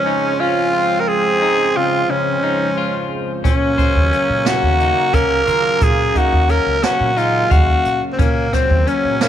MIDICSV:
0, 0, Header, 1, 7, 480
1, 0, Start_track
1, 0, Tempo, 678733
1, 759, Time_signature, 7, 3, 24, 8
1, 6566, End_track
2, 0, Start_track
2, 0, Title_t, "Tenor saxophone"
2, 0, Program_c, 0, 66
2, 0, Note_on_c, 0, 61, 85
2, 285, Note_on_c, 0, 65, 90
2, 296, Note_off_c, 0, 61, 0
2, 707, Note_on_c, 0, 70, 72
2, 718, Note_off_c, 0, 65, 0
2, 763, Note_on_c, 0, 68, 105
2, 774, Note_off_c, 0, 70, 0
2, 1249, Note_on_c, 0, 65, 91
2, 1260, Note_off_c, 0, 68, 0
2, 1487, Note_on_c, 0, 61, 81
2, 1498, Note_off_c, 0, 65, 0
2, 2201, Note_off_c, 0, 61, 0
2, 2440, Note_on_c, 0, 61, 91
2, 3160, Note_on_c, 0, 66, 98
2, 3171, Note_off_c, 0, 61, 0
2, 3637, Note_on_c, 0, 70, 111
2, 3648, Note_off_c, 0, 66, 0
2, 4124, Note_on_c, 0, 68, 100
2, 4135, Note_off_c, 0, 70, 0
2, 4368, Note_on_c, 0, 66, 97
2, 4379, Note_off_c, 0, 68, 0
2, 4599, Note_on_c, 0, 70, 97
2, 4610, Note_off_c, 0, 66, 0
2, 4836, Note_on_c, 0, 66, 92
2, 4847, Note_off_c, 0, 70, 0
2, 5077, Note_on_c, 0, 65, 98
2, 5088, Note_off_c, 0, 66, 0
2, 5314, Note_on_c, 0, 66, 92
2, 5325, Note_off_c, 0, 65, 0
2, 5676, Note_off_c, 0, 66, 0
2, 5747, Note_on_c, 0, 60, 69
2, 5802, Note_on_c, 0, 58, 84
2, 5812, Note_off_c, 0, 60, 0
2, 6040, Note_on_c, 0, 60, 85
2, 6050, Note_off_c, 0, 58, 0
2, 6283, Note_on_c, 0, 61, 80
2, 6294, Note_off_c, 0, 60, 0
2, 6521, Note_on_c, 0, 58, 83
2, 6532, Note_off_c, 0, 61, 0
2, 6566, Note_off_c, 0, 58, 0
2, 6566, End_track
3, 0, Start_track
3, 0, Title_t, "Clean electric guitar"
3, 0, Program_c, 1, 27
3, 43, Note_on_c, 1, 63, 66
3, 233, Note_off_c, 1, 63, 0
3, 281, Note_on_c, 1, 61, 76
3, 472, Note_off_c, 1, 61, 0
3, 519, Note_on_c, 1, 65, 71
3, 902, Note_off_c, 1, 65, 0
3, 1004, Note_on_c, 1, 63, 74
3, 1193, Note_off_c, 1, 63, 0
3, 1246, Note_on_c, 1, 49, 68
3, 1434, Note_off_c, 1, 49, 0
3, 1480, Note_on_c, 1, 49, 79
3, 1670, Note_off_c, 1, 49, 0
3, 1721, Note_on_c, 1, 63, 69
3, 1911, Note_off_c, 1, 63, 0
3, 1963, Note_on_c, 1, 65, 75
3, 2344, Note_off_c, 1, 65, 0
3, 2433, Note_on_c, 1, 61, 81
3, 2626, Note_off_c, 1, 61, 0
3, 2673, Note_on_c, 1, 72, 74
3, 2866, Note_off_c, 1, 72, 0
3, 2913, Note_on_c, 1, 61, 73
3, 3106, Note_off_c, 1, 61, 0
3, 3153, Note_on_c, 1, 61, 83
3, 3346, Note_off_c, 1, 61, 0
3, 3392, Note_on_c, 1, 63, 72
3, 3586, Note_off_c, 1, 63, 0
3, 3630, Note_on_c, 1, 61, 83
3, 3824, Note_off_c, 1, 61, 0
3, 3867, Note_on_c, 1, 65, 73
3, 4254, Note_off_c, 1, 65, 0
3, 4350, Note_on_c, 1, 63, 70
3, 4544, Note_off_c, 1, 63, 0
3, 4593, Note_on_c, 1, 61, 68
3, 4786, Note_off_c, 1, 61, 0
3, 4828, Note_on_c, 1, 61, 88
3, 5024, Note_off_c, 1, 61, 0
3, 5067, Note_on_c, 1, 63, 73
3, 5263, Note_off_c, 1, 63, 0
3, 5306, Note_on_c, 1, 77, 79
3, 5694, Note_off_c, 1, 77, 0
3, 5789, Note_on_c, 1, 61, 90
3, 5985, Note_off_c, 1, 61, 0
3, 6032, Note_on_c, 1, 60, 78
3, 6227, Note_off_c, 1, 60, 0
3, 6270, Note_on_c, 1, 61, 71
3, 6466, Note_off_c, 1, 61, 0
3, 6512, Note_on_c, 1, 61, 85
3, 6566, Note_off_c, 1, 61, 0
3, 6566, End_track
4, 0, Start_track
4, 0, Title_t, "Trombone"
4, 0, Program_c, 2, 57
4, 0, Note_on_c, 2, 61, 114
4, 517, Note_on_c, 2, 60, 104
4, 528, Note_off_c, 2, 61, 0
4, 2196, Note_off_c, 2, 60, 0
4, 2427, Note_on_c, 2, 58, 115
4, 5043, Note_off_c, 2, 58, 0
4, 5071, Note_on_c, 2, 56, 98
4, 5576, Note_off_c, 2, 56, 0
4, 5788, Note_on_c, 2, 54, 94
4, 6566, Note_off_c, 2, 54, 0
4, 6566, End_track
5, 0, Start_track
5, 0, Title_t, "Analog synth pad"
5, 0, Program_c, 3, 89
5, 0, Note_on_c, 3, 49, 82
5, 0, Note_on_c, 3, 53, 71
5, 0, Note_on_c, 3, 56, 68
5, 0, Note_on_c, 3, 72, 84
5, 2408, Note_off_c, 3, 49, 0
5, 2409, Note_off_c, 3, 53, 0
5, 2410, Note_off_c, 3, 56, 0
5, 2412, Note_off_c, 3, 72, 0
5, 2438, Note_on_c, 3, 49, 69
5, 2438, Note_on_c, 3, 54, 61
5, 2439, Note_on_c, 3, 58, 62
5, 2444, Note_on_c, 3, 61, 69
5, 5770, Note_off_c, 3, 49, 0
5, 5770, Note_off_c, 3, 54, 0
5, 5771, Note_off_c, 3, 58, 0
5, 5773, Note_off_c, 3, 61, 0
5, 5792, Note_on_c, 3, 49, 68
5, 5796, Note_on_c, 3, 54, 63
5, 5799, Note_on_c, 3, 58, 64
5, 6566, Note_off_c, 3, 49, 0
5, 6566, Note_off_c, 3, 54, 0
5, 6566, Note_off_c, 3, 58, 0
5, 6566, End_track
6, 0, Start_track
6, 0, Title_t, "Upright bass"
6, 0, Program_c, 4, 32
6, 2435, Note_on_c, 4, 46, 90
6, 2722, Note_off_c, 4, 46, 0
6, 2797, Note_on_c, 4, 39, 93
6, 2892, Note_off_c, 4, 39, 0
6, 3038, Note_on_c, 4, 46, 83
6, 3228, Note_off_c, 4, 46, 0
6, 3272, Note_on_c, 4, 39, 84
6, 3465, Note_off_c, 4, 39, 0
6, 3632, Note_on_c, 4, 37, 79
6, 3825, Note_off_c, 4, 37, 0
6, 3875, Note_on_c, 4, 51, 80
6, 3971, Note_off_c, 4, 51, 0
6, 4111, Note_on_c, 4, 46, 97
6, 4304, Note_off_c, 4, 46, 0
6, 4473, Note_on_c, 4, 39, 93
6, 4665, Note_off_c, 4, 39, 0
6, 4710, Note_on_c, 4, 37, 84
6, 4808, Note_off_c, 4, 37, 0
6, 4953, Note_on_c, 4, 46, 91
6, 5241, Note_off_c, 4, 46, 0
6, 5313, Note_on_c, 4, 39, 100
6, 5506, Note_off_c, 4, 39, 0
6, 5556, Note_on_c, 4, 46, 85
6, 5652, Note_off_c, 4, 46, 0
6, 5794, Note_on_c, 4, 46, 95
6, 6082, Note_off_c, 4, 46, 0
6, 6151, Note_on_c, 4, 39, 102
6, 6249, Note_off_c, 4, 39, 0
6, 6393, Note_on_c, 4, 46, 90
6, 6566, Note_off_c, 4, 46, 0
6, 6566, End_track
7, 0, Start_track
7, 0, Title_t, "Drums"
7, 2437, Note_on_c, 9, 36, 95
7, 2438, Note_on_c, 9, 42, 76
7, 2508, Note_off_c, 9, 36, 0
7, 2509, Note_off_c, 9, 42, 0
7, 2677, Note_on_c, 9, 36, 76
7, 2678, Note_on_c, 9, 42, 59
7, 2748, Note_off_c, 9, 36, 0
7, 2748, Note_off_c, 9, 42, 0
7, 2918, Note_on_c, 9, 42, 57
7, 2989, Note_off_c, 9, 42, 0
7, 3154, Note_on_c, 9, 38, 103
7, 3154, Note_on_c, 9, 42, 76
7, 3225, Note_off_c, 9, 38, 0
7, 3225, Note_off_c, 9, 42, 0
7, 3393, Note_on_c, 9, 42, 58
7, 3464, Note_off_c, 9, 42, 0
7, 3631, Note_on_c, 9, 42, 81
7, 3633, Note_on_c, 9, 36, 105
7, 3702, Note_off_c, 9, 42, 0
7, 3704, Note_off_c, 9, 36, 0
7, 3872, Note_on_c, 9, 42, 65
7, 3942, Note_off_c, 9, 42, 0
7, 4110, Note_on_c, 9, 42, 86
7, 4113, Note_on_c, 9, 36, 105
7, 4181, Note_off_c, 9, 42, 0
7, 4183, Note_off_c, 9, 36, 0
7, 4351, Note_on_c, 9, 42, 65
7, 4353, Note_on_c, 9, 36, 74
7, 4422, Note_off_c, 9, 42, 0
7, 4423, Note_off_c, 9, 36, 0
7, 4591, Note_on_c, 9, 42, 56
7, 4661, Note_off_c, 9, 42, 0
7, 4833, Note_on_c, 9, 38, 96
7, 4833, Note_on_c, 9, 42, 78
7, 4904, Note_off_c, 9, 38, 0
7, 4904, Note_off_c, 9, 42, 0
7, 5072, Note_on_c, 9, 42, 58
7, 5143, Note_off_c, 9, 42, 0
7, 5310, Note_on_c, 9, 42, 79
7, 5313, Note_on_c, 9, 36, 108
7, 5381, Note_off_c, 9, 42, 0
7, 5383, Note_off_c, 9, 36, 0
7, 5552, Note_on_c, 9, 42, 57
7, 5623, Note_off_c, 9, 42, 0
7, 5790, Note_on_c, 9, 42, 77
7, 5793, Note_on_c, 9, 36, 110
7, 5861, Note_off_c, 9, 42, 0
7, 5864, Note_off_c, 9, 36, 0
7, 6032, Note_on_c, 9, 38, 34
7, 6032, Note_on_c, 9, 42, 58
7, 6034, Note_on_c, 9, 36, 71
7, 6103, Note_off_c, 9, 38, 0
7, 6103, Note_off_c, 9, 42, 0
7, 6105, Note_off_c, 9, 36, 0
7, 6274, Note_on_c, 9, 42, 55
7, 6345, Note_off_c, 9, 42, 0
7, 6512, Note_on_c, 9, 38, 99
7, 6512, Note_on_c, 9, 42, 70
7, 6566, Note_off_c, 9, 38, 0
7, 6566, Note_off_c, 9, 42, 0
7, 6566, End_track
0, 0, End_of_file